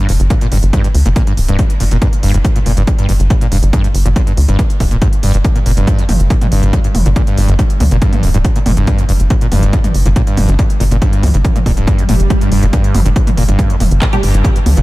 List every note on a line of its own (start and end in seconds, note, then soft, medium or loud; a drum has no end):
0.09 0.18 F1 medium
0.09 0.13 G2 medium
0.09 open hi-hat loud
0.20 0.29 G1 medium
0.20 closed hi-hat medium
0.30 0.34 A#2 medium
0.30 kick loud
0.30 closed hi-hat medium
0.41 0.47 A#2 medium
0.41 closed hi-hat medium
0.52 0.61 G1 medium
0.52 0.58 G2 medium
0.52 open hi-hat loud
0.63 0.72 G1 medium
0.63 closed hi-hat medium
0.73 0.82 G2 loud
0.73 kick loud
0.73 closed hi-hat medium
0.84 0.88 G2 medium
0.84 closed hi-hat medium
0.95 1.04 D2 medium
0.95 open hi-hat loud
1.06 1.14 G1 medium
1.06 1.09 A#2 medium
1.06 closed hi-hat medium
1.16 1.22 A#2 medium
1.16 kick loud
1.16 closed hi-hat medium
1.27 1.33 G2 medium
1.27 closed hi-hat medium
1.37 1.47 D1 medium
1.37 open hi-hat medium
1.48 1.57 D1 medium
1.48 1.57 G2 loud
1.48 closed hi-hat medium
1.59 1.63 G2 medium
1.59 kick loud
1.59 closed hi-hat medium
1.70 closed hi-hat medium
1.80 1.90 G1 medium
1.80 1.84 A#2 medium
1.80 open hi-hat loud
1.91 2.00 G1 medium
1.91 1.97 A#2 medium
1.91 closed hi-hat medium
2.02 2.08 G2 medium
2.02 kick loud
2.02 closed hi-hat medium
2.13 closed hi-hat medium
2.23 2.33 G1 medium
2.23 2.32 G2 loud
2.23 open hi-hat loud
2.34 2.43 G1 medium
2.34 2.38 G2 medium
2.34 closed hi-hat medium
2.45 kick loud
2.45 closed hi-hat medium
2.56 2.59 A#2 medium
2.56 closed hi-hat medium
2.66 2.75 G1 medium
2.66 2.72 A#2 medium
2.66 open hi-hat loud
2.77 2.86 G1 medium
2.77 2.83 G2 medium
2.77 closed hi-hat medium
2.87 kick loud
2.87 closed hi-hat medium
2.98 3.07 G2 loud
2.98 closed hi-hat medium
3.09 3.18 G1 medium
3.09 3.13 G2 medium
3.09 open hi-hat medium
3.20 3.29 G1 medium
3.20 closed hi-hat medium
3.30 3.34 A#2 medium
3.30 kick loud
3.30 closed hi-hat medium
3.41 3.47 A#2 medium
3.41 closed hi-hat medium
3.52 3.61 F1 loud
3.52 3.58 G2 medium
3.52 open hi-hat loud
3.63 3.72 G1 medium
3.63 closed hi-hat medium
3.73 3.82 G2 loud
3.73 kick loud
3.73 closed hi-hat medium
3.84 3.88 G2 medium
3.84 closed hi-hat medium
3.94 4.04 G1 medium
3.94 open hi-hat loud
4.05 4.14 G1 medium
4.05 4.09 A#2 medium
4.05 closed hi-hat medium
4.16 4.22 A#2 medium
4.16 kick loud
4.16 closed hi-hat medium
4.27 4.33 G2 medium
4.27 closed hi-hat soft
4.37 4.47 D2 loud
4.37 open hi-hat loud
4.48 4.57 G1 medium
4.48 4.57 G2 loud
4.48 closed hi-hat medium
4.59 4.62 G2 medium
4.59 kick loud
4.59 closed hi-hat medium
4.70 closed hi-hat medium
4.80 4.90 D1 medium
4.80 4.84 A#2 medium
4.80 kick medium
4.80 open hi-hat medium
4.91 5.00 D1 medium
4.91 4.97 A#2 medium
4.91 closed hi-hat medium
5.02 5.08 G2 medium
5.02 kick loud
5.02 closed hi-hat medium
5.13 closed hi-hat medium
5.23 5.33 G1 medium
5.23 5.32 G2 loud
5.23 open hi-hat loud
5.34 5.43 G1 medium
5.34 5.38 G2 medium
5.34 closed hi-hat medium
5.45 kick loud
5.45 closed hi-hat medium
5.56 5.59 A#2 medium
5.56 closed hi-hat soft
5.66 5.75 G1 loud
5.66 5.72 A#2 medium
5.66 open hi-hat loud
5.77 5.86 G1 medium
5.77 6.00 G2 medium
5.77 closed hi-hat medium
5.87 kick loud
5.87 closed hi-hat medium
5.98 6.04 F2 medium
5.98 closed hi-hat medium
6.09 6.18 G1 medium
6.09 6.13 G2 medium
6.09 mid tom loud
6.09 open hi-hat loud
6.20 6.29 G1 medium
6.20 closed hi-hat soft
6.30 6.34 A#2 medium
6.30 kick loud
6.30 closed hi-hat medium
6.41 6.47 A#2 medium
6.41 closed hi-hat soft
6.41 mid tom medium
6.52 6.61 G1 medium
6.52 6.75 G2 medium
6.52 open hi-hat medium
6.63 6.72 G1 medium
6.63 closed hi-hat soft
6.73 6.79 F2 medium
6.73 kick loud
6.73 closed hi-hat medium
6.84 6.88 G2 medium
6.84 closed hi-hat medium
6.95 7.04 F1 loud
6.95 mid tom loud
6.95 open hi-hat loud
7.06 7.14 G1 medium
7.06 7.09 A#2 medium
7.06 closed hi-hat medium
7.16 7.22 A#2 medium
7.16 kick loud
7.16 closed hi-hat medium
7.27 7.50 G2 medium
7.27 closed hi-hat soft
7.37 7.47 G1 medium
7.37 open hi-hat loud
7.48 7.57 G1 medium
7.48 7.54 F2 medium
7.48 closed hi-hat medium
7.59 7.63 G2 medium
7.59 kick loud
7.59 closed hi-hat medium
7.70 closed hi-hat medium
7.80 7.90 D2 medium
7.80 7.84 A#2 medium
7.80 mid tom medium
7.80 open hi-hat loud
7.91 8.00 G1 medium
7.91 7.97 A#2 medium
7.91 closed hi-hat soft
8.02 8.25 G2 medium
8.02 kick loud
8.02 closed hi-hat medium
8.13 closed hi-hat soft
8.13 mid tom medium
8.23 8.33 D1 medium
8.23 8.29 F2 medium
8.23 open hi-hat medium
8.34 8.43 D1 medium
8.34 8.38 G2 medium
8.34 closed hi-hat soft
8.45 kick loud
8.45 closed hi-hat medium
8.56 8.59 A#2 medium
8.56 closed hi-hat medium
8.66 8.75 G1 medium
8.66 8.72 A#2 medium
8.66 mid tom loud
8.66 open hi-hat loud
8.77 8.86 G1 medium
8.77 9.00 G2 medium
8.77 closed hi-hat soft
8.87 kick loud
8.87 closed hi-hat medium
8.98 9.04 F2 medium
8.98 closed hi-hat soft
9.09 9.18 G1 medium
9.09 9.13 G2 medium
9.09 open hi-hat medium
9.20 9.29 G1 medium
9.20 closed hi-hat medium
9.30 9.34 A#2 medium
9.30 kick loud
9.30 closed hi-hat medium
9.41 9.47 A#2 medium
9.41 closed hi-hat medium
9.52 9.61 G1 medium
9.52 9.75 G2 medium
9.52 mid tom medium
9.52 open hi-hat loud
9.63 9.72 G1 medium
9.63 closed hi-hat medium
9.73 9.79 F2 medium
9.73 kick loud
9.73 closed hi-hat medium
9.84 9.88 G2 medium
9.84 closed hi-hat medium
9.84 mid tom medium
9.94 10.04 G1 medium
9.94 open hi-hat medium
10.06 10.14 G1 medium
10.06 10.09 A#2 medium
10.06 closed hi-hat soft
10.16 10.22 A#2 medium
10.16 kick loud
10.16 closed hi-hat medium
10.27 10.50 G2 medium
10.27 closed hi-hat medium
10.37 10.47 F1 medium
10.37 mid tom loud
10.37 open hi-hat loud
10.48 10.57 G1 medium
10.48 10.54 F2 medium
10.48 closed hi-hat soft
10.59 10.62 G2 medium
10.59 kick loud
10.59 closed hi-hat medium
10.70 closed hi-hat medium
10.80 10.90 G1 medium
10.80 10.84 A#2 medium
10.80 open hi-hat medium
10.91 11.00 G1 medium
10.91 10.97 A#2 medium
10.91 closed hi-hat medium
11.02 11.25 G2 medium
11.02 kick loud
11.02 closed hi-hat medium
11.13 closed hi-hat medium
11.23 11.32 D2 loud
11.23 11.29 F2 medium
11.23 mid tom medium
11.23 open hi-hat loud
11.34 11.43 G1 medium
11.34 11.38 G2 medium
11.34 closed hi-hat medium
11.45 kick loud
11.45 closed hi-hat medium
11.45 mid tom medium
11.56 11.59 A#2 medium
11.56 closed hi-hat medium
11.56 mid tom medium
11.66 11.75 D1 medium
11.66 11.72 A#2 medium
11.66 kick medium
11.66 open hi-hat medium
11.77 11.86 D1 medium
11.77 12.00 G2 medium
11.77 closed hi-hat medium
11.87 kick loud
11.87 closed hi-hat medium
11.87 swell medium
11.99 12.04 F2 medium
11.99 closed hi-hat medium
12.09 12.18 G1 loud
12.09 12.15 A2 loud
12.09 mid tom medium
12.09 open hi-hat loud
12.20 12.29 G1 medium
12.20 closed hi-hat medium
12.30 12.34 G1 medium
12.30 kick loud
12.30 closed hi-hat medium
12.41 12.50 G2 medium
12.41 closed hi-hat medium
12.51 12.61 G1 medium
12.51 12.64 G2 medium
12.51 open hi-hat medium
12.63 12.71 G1 medium
12.63 12.66 A#2 loud
12.63 closed hi-hat medium
12.73 12.96 G2 medium
12.73 kick loud
12.73 closed hi-hat medium
12.84 closed hi-hat medium
12.94 13.04 G1 medium
12.94 13.01 F2 medium
12.94 mid tom medium
12.94 open hi-hat loud
13.05 13.14 G1 medium
13.05 13.09 G2 medium
13.05 closed hi-hat medium
13.16 kick loud
13.16 closed hi-hat medium
13.27 13.30 A#2 medium
13.27 closed hi-hat medium
13.27 mid tom medium
13.37 13.47 G1 medium
13.37 13.43 A#2 medium
13.37 open hi-hat medium
13.48 13.57 G1 medium
13.48 13.71 G2 medium
13.48 closed hi-hat medium
13.59 kick loud
13.59 closed hi-hat medium
13.70 13.76 F2 medium
13.70 closed hi-hat medium
13.80 13.90 F1 medium
13.80 13.84 G2 medium
13.80 mid tom medium
13.80 open hi-hat loud
13.91 14.00 G1 medium
13.91 closed hi-hat medium
14.02 14.05 A#2 medium
14.02 kick loud
14.02 clap loud
14.02 closed hi-hat medium
14.13 14.18 A#2 medium
14.13 14.22 G3 medium
14.13 14.22 D4 medium
14.13 14.22 G4 loud
14.13 closed hi-hat medium
14.23 14.33 G1 medium
14.23 14.46 G2 medium
14.23 open hi-hat loud
14.34 14.43 G1 medium
14.34 closed hi-hat medium
14.44 14.51 F2 medium
14.44 kick loud
14.44 closed hi-hat medium
14.56 14.59 G2 medium
14.56 closed hi-hat medium
14.66 14.75 D2 loud
14.66 mid tom medium
14.66 open hi-hat loud
14.77 14.82 G1 medium
14.77 14.81 A#2 medium
14.77 closed hi-hat medium